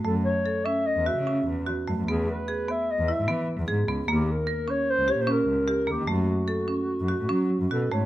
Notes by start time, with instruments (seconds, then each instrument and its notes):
0.04 cello F#2, marimba A3, clarinet A4
0.25 clarinet C#5
0.46 marimba A4
0.65 marimba C#4, clarinet E5
0.87 clarinet D#5
0.97 cello E2
1.06 marimba F#4, clarinet E5
1.17 cello C#3
1.27 marimba C#4
1.48 cello E2
1.67 marimba F#4
1.88 cello F#2, marimba A3
1.98 cello F#2
2.08 cello E2, marimba B3, clarinet G#4
2.31 clarinet B4
2.48 marimba G#4
2.69 marimba B3, clarinet E5
2.91 clarinet D#5
2.99 cello E2
3.08 marimba E4
3.12 clarinet E5
3.19 cello G#2
3.28 cello E3, marimba B3
3.59 cello E2
3.68 cello G#2, marimba G#4
3.88 cello C#2, marimba B3
4.08 cello D#2, marimba A#3, clarinet G4
4.31 clarinet A#4
4.47 marimba A#4
4.68 marimba C#4, clarinet C#5
4.90 clarinet C5
4.99 cello C#2
5.08 marimba G4, clarinet C#5
5.18 cello A#2, clarinet C5
5.27 marimba C#4
5.31 clarinet A#4
5.48 cello C#2
5.68 marimba G4
5.87 cello D#2, marimba A#3, clarinet G4
5.98 cello D#3
6.07 cello F#2, marimba A3, clarinet F#4
6.48 marimba A4
6.68 marimba C#4
7.00 cello F#2
7.08 marimba F#4
7.20 cello A2
7.29 cello F#3, marimba C#4
7.61 cello F#2
7.71 cello B2, marimba F#4, clarinet A4
7.92 cello G#2, marimba A3, clarinet C#5